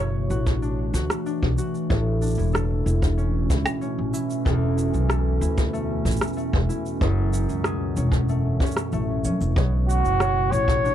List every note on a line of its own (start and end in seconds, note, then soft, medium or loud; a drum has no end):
0.00 0.27 F#1 medium
0.00 1.96 B2 medium
0.00 10.95 B2 medium
0.00 10.95 E3 medium
0.00 2.35 A3 medium
0.00 10.95 A3 medium
0.00 3.17 C#4 medium
0.00 0.30 F#4 medium
0.00 0.98 G#4 medium
0.00 3.23 C#5 medium
0.13 1.90 D4 medium
0.30 0.90 A1 medium
0.30 0.94 F#4 medium
0.30 shaker medium
0.46 kick medium
0.46 shaker soft
0.62 1.26 D4 medium
0.62 shaker soft
0.94 1.08 D2 medium
0.94 1.58 F#4 medium
0.94 kick medium
0.94 shaker medium
1.10 cross-stick medium
1.10 shaker soft
1.26 2.21 D4 medium
1.26 shaker soft
1.43 1.56 B1 medium
1.43 kick loud
1.58 4.02 F#4 medium
1.58 shaker medium
1.75 shaker soft
1.90 2.34 A1 medium
1.90 4.51 A2 medium
1.90 2.53 A4 medium
1.90 kick loud
1.90 shaker soft
2.22 3.23 D4 medium
2.22 shaker medium
2.27 shaker medium
2.30 shaker soft
2.35 2.82 E1 medium
2.35 2.85 E4 medium
2.35 shaker soft
2.39 shaker soft
2.43 shaker soft
2.52 4.45 A4 medium
2.52 cross-stick medium
2.52 shaker soft
2.56 shaker soft
2.86 3.46 E1 medium
2.86 3.50 E4 medium
2.86 shaker medium
2.91 9.57 C#4 medium
3.02 kick loud
3.02 shaker soft
3.17 3.81 C#4 medium
3.17 shaker soft
3.50 3.64 C#2 medium
3.50 4.13 E4 medium
3.50 kick medium
3.50 shaker medium
3.66 cross-stick medium
3.66 shaker soft
3.81 6.71 C#4 medium
3.81 shaker soft
3.98 4.12 A1 medium
4.13 4.77 E4 medium
4.13 shaker medium
4.30 shaker soft
4.45 4.90 E1 medium
4.45 7.06 E2 medium
4.45 5.08 A4 medium
4.45 kick loud
4.45 shaker soft
4.77 5.41 E4 medium
4.77 shaker medium
4.94 5.38 B1 medium
4.94 shaker soft
5.09 8.82 A4 medium
5.09 cross-stick medium
5.09 shaker soft
5.41 6.01 D2 medium
5.41 6.05 E4 medium
5.41 shaker medium
5.58 kick loud
5.58 shaker soft
5.73 6.36 A3 medium
5.73 shaker soft
6.05 6.19 A1 medium
6.05 6.68 E4 medium
6.05 kick medium
6.05 shaker medium
6.11 shaker medium
6.16 shaker soft
6.21 cross-stick medium
6.21 shaker soft
6.27 shaker soft
6.33 8.29 A3 medium
6.33 shaker soft
6.38 shaker soft
6.53 6.67 E1 medium
6.53 kick loud
6.69 9.30 E4 medium
6.69 shaker medium
6.86 shaker soft
7.01 7.45 F#1 medium
7.01 9.62 F#2 medium
7.01 7.64 G#4 medium
7.01 kick loud
7.01 shaker soft
7.33 7.97 C#4 medium
7.33 shaker medium
7.49 7.93 C#2 medium
7.49 shaker soft
7.64 9.92 G#4 medium
7.64 cross-stick medium
7.64 shaker soft
7.96 8.57 E1 medium
7.96 8.61 C#4 medium
7.96 shaker medium
8.12 kick medium
8.12 shaker soft
8.29 8.93 A3 medium
8.29 shaker soft
8.60 9.24 C#4 medium
8.60 kick loud
8.60 shaker soft
8.66 shaker soft
8.71 shaker medium
8.77 cross-stick medium
8.77 shaker soft
8.92 9.26 A1 medium
8.92 10.95 A3 medium
8.92 shaker soft
9.24 9.38 F#2 medium
9.24 10.95 C#4 medium
9.24 shaker medium
9.41 9.54 E1 medium
9.41 shaker soft
9.56 10.00 B1 medium
9.56 10.95 B2 medium
9.56 10.20 C#5 medium
9.56 kick loud
9.56 shaker soft
9.88 10.53 F#4 loud
9.88 10.52 F#4 medium
9.88 shaker medium
10.04 10.48 F#1 medium
10.04 shaker soft
10.20 10.95 C#5 medium
10.20 cross-stick medium
10.20 shaker soft
10.52 10.95 A1 medium
10.52 10.95 F#4 medium
10.52 10.95 C#5 loud
10.52 shaker medium
10.68 kick medium
10.68 shaker soft
10.72 10.95 D4 medium
10.84 10.95 D4 medium
10.84 shaker soft